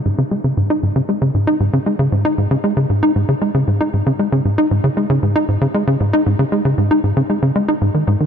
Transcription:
X:1
M:4/4
L:1/16
Q:1/4=116
K:Abm
V:1 name="Analog synth bass" clef=bass
A,, D, A, D, A,, E A,, D, A, D, A,, E A,, D, A, D, | A,, E A,, D, A, D, A,, E A,, D, A, D, A,, E A,, D, | A, D, A,, E A,, D, A, D, A,, E A,, D, A, D, A,, E | A,, D, A, D, A,, E A,, D, A, D, A, E A,, E, A,, E, |]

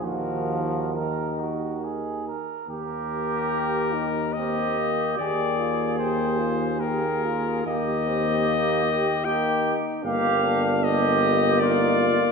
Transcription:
X:1
M:3/4
L:1/8
Q:1/4=74
K:Ebm
V:1 name="Cornet"
B2 B3 z | [K:Eb] B4 e2 | d2 c2 B2 | e4 g z |
f2 e2 d2 |]
V:2 name="Flugelhorn"
G2 B G A B | [K:Eb] G4 G2 | A4 A2 | G4 G z |
G2 G2 F2 |]
V:3 name="Euphonium"
F,2 E,3 z | [K:Eb] z2 G E C B, | G F G F G F | B, C B, G E2 |
B, D2 z E F |]
V:4 name="Euphonium"
E,2 E,3 z | [K:Eb] B,4 B,2 | B,4 B,2 | B,4 B, z |
B,2 B,4 |]
V:5 name="Tuba" clef=bass
E,,4- E,, z | [K:Eb] E,,6 | E,,6 | E,,4- E,, z |
G,,,6 |]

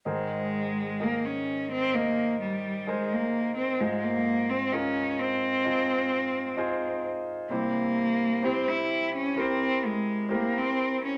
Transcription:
X:1
M:4/4
L:1/16
Q:1/4=65
K:Ab
V:1 name="Grand piano"
[EABc]4 [EABe]4 [EBce]4 [EABc]4 | [EFAc]4 [EFAB]4 [EFAe]4 [EFAc]4 | [C=EGc]4 [CEGc]4 [CEGB]4 [CEGB]4 |]
V:2 name="Grand piano" clef=bass
[A,,E,]6 z8 z2 | [A,,A,]6 z8 z2 | [C,G,]6 z8 z2 |]
V:3 name="Cello"
A,4 B, D2 C B,2 G,2 A, B,2 C | A, B,2 C D2 C8 z2 | B,4 C =E2 D C2 A,2 B, C2 D |]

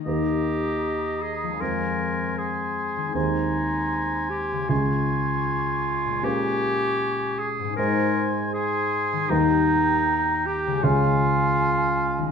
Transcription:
X:1
M:4/4
L:1/8
Q:1/4=78
K:Ab
V:1 name="Flute"
b4 c'2 c'2 | c'4 d'4 | d'3 z c'2 c'2 | b4 a4 |]
V:2 name="Oboe"
e4 a2 a2 | a4 a4 | a3 z a2 a2 | g4 f4 |]
V:3 name="Clarinet"
G3 A B2 A2 | E3 G F4 | G3 A B z A2 | E3 G F4 |]
V:4 name="Grand piano"
[E,,B,EB]4 [F,,A,CF]4 | [E,,A,Cc]4 [D,,A,DA]4 | [B,,A,DB]4 [A,,A,Ec]4 | [E,,G,EB]4 [D,,A,Ad]4 |]
V:5 name="Harp" clef=bass
[E,B,E]4 [F,A,CF]4 | [E,A,C]4 [D,A,D]4 | [B,,A,DB]4 [A,,A,Ec]4 | [E,G,EB]4 [D,A,Ad]4 |]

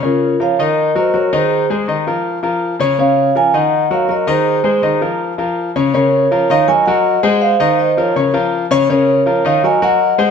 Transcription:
X:1
M:4/4
L:1/8
Q:1/4=162
K:Bbm
V:1 name="Vibraphone"
[FB]2 [df] [Be]2 [ce] [Bd] [Ac]- | [Ac] z6 z | [df]2 [fa] [eg]2 [df] [Be] [Ac]- | [Ac]3 z4 z |
[Bd]3 [df] [ea] [eg]3 | [cf]2 [ce] [Bd]2 z3 | [Bd]3 [df] [ea] [eg]3 |]
V:2 name="Grand piano"
[D,Dd]2 [F,FB] [E,Ee]2 [G,GB] [G,GB] [E,Ee]- | [E,Ee] [A,Ac] [E,Ee] [F,FB]2 [F,FB]2 [D,Dd] | [D,Dd]2 [F,FB] [E,Ee]2 [G,GB] [G,GB] [E,Ee]- | [E,Ee] [A,Ac] [E,Ee] [F,FB]2 [F,FB]2 [D,Dd] |
[D,Dd]2 [F,FB] [E,Ee] [G,GB] [G,GB]2 [A,Ac]- | [A,Ac] [E,Ee]2 [F,FB] [D,Dd] [F,FB]2 [D,Dd] | [D,Dd]2 [F,FB] [E,Ee] [G,GB] [G,GB]2 [A,Ac] |]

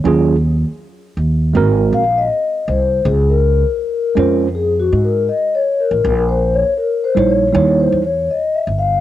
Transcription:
X:1
M:4/4
L:1/16
Q:"Swing 16ths" 1/4=80
K:Db
V:1 name="Vibraphone"
z8 z2 f e3 c2 | A B6 z (3A2 G2 B2 (3e2 d2 B2- | (3B2 c2 d2 (3B2 c2 d2- (3d2 c2 d2 (3e2 _f2 =f2 |]
V:2 name="Tine electric piano"
[G,DFA]2 z6 [A,CGB]2 z6 | z6 [A,DFc]2 z8 | z6 [=G,E=Ed]2 [G,_E_Fd]2 z6 |]
V:3 name="Upright bass" clef=bass
E,,3 z3 E,,2 A,,,2 B,,,2 z2 C,,2 | D,,3 z3 F,,4 A,,2 z3 =A,,, | B,,,3 z3 B,,,2 E,,2 _F,,2 z2 =G,,,2 |]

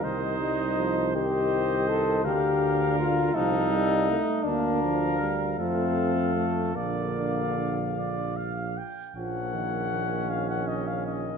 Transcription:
X:1
M:6/8
L:1/16
Q:3/8=53
K:Bb
V:1 name="Cornet"
e6 e6 | f6 f4 z2 | f6 f6 | f8- f2 z2 |
[K:Bbm] g6 f g e f e2 |]
V:2 name="Trumpet"
c6 c6 | B6 A4 z2 | B6 A6 | d6 d2 f2 g2 |
[K:Bbm] D12 |]
V:3 name="French horn"
E6 G4 A2 | G4 F2 E6 | D4 z2 C4 A,2 | B,6 z6 |
[K:Bbm] B,6 D6 |]
V:4 name="Euphonium" clef=bass
E,2 G,2 F,2 E,6 | D,6 F,2 G,2 A,2 | B,2 F,2 G,2 A,4 z2 | D,8- D, z3 |
[K:Bbm] F,2 E,2 E,8 |]
V:5 name="Tuba" clef=bass
C,,12 | D,,6 C,,4 z2 | D,,6 F,,6 | B,,,8- B,,,2 z2 |
[K:Bbm] B,,,12 |]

